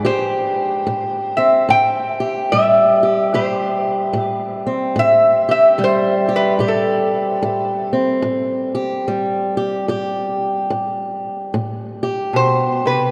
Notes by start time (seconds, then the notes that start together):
0.05 A2 G4 C5
0.87 A2
1.37 C4 E5
1.69 A2 G5
2.20 G4
2.52 A2 G3 E5
3.03 G4
3.34 A2 G4 C5
4.13 A2
4.18 B4
4.67 C4
4.96 A2 E5
5.49 G4 E5
5.78 A2 G3
5.84 C5
6.29 G4
6.36 B4
6.59 A2 G4
6.68 A4
7.42 A2
7.93 C4
8.22 A2
8.75 G4
9.08 A2 G3
9.57 G4
9.88 A2 G4
10.70 A2
11.54 A2
12.03 G4
12.33 B2 C5
12.86 C3 B4